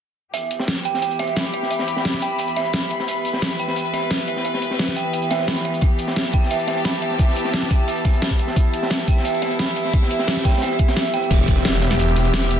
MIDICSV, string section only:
0, 0, Header, 1, 2, 480
1, 0, Start_track
1, 0, Key_signature, 1, "minor"
1, 0, Tempo, 342857
1, 470, Time_signature, 4, 2, 24, 8
1, 17639, End_track
2, 0, Start_track
2, 0, Title_t, "String section"
2, 0, Program_c, 0, 48
2, 470, Note_on_c, 0, 59, 74
2, 471, Note_on_c, 0, 52, 82
2, 471, Note_on_c, 0, 67, 92
2, 4296, Note_off_c, 0, 67, 0
2, 4312, Note_on_c, 0, 71, 90
2, 8137, Note_off_c, 0, 71, 0
2, 8151, Note_on_c, 0, 67, 89
2, 11976, Note_off_c, 0, 67, 0
2, 11991, Note_on_c, 0, 64, 91
2, 15774, Note_off_c, 0, 59, 0
2, 15775, Note_off_c, 0, 52, 0
2, 15816, Note_off_c, 0, 64, 0
2, 15831, Note_on_c, 0, 52, 88
2, 15831, Note_on_c, 0, 67, 93
2, 15832, Note_on_c, 0, 59, 77
2, 17639, Note_off_c, 0, 52, 0
2, 17639, Note_off_c, 0, 59, 0
2, 17639, Note_off_c, 0, 67, 0
2, 17639, End_track
0, 0, End_of_file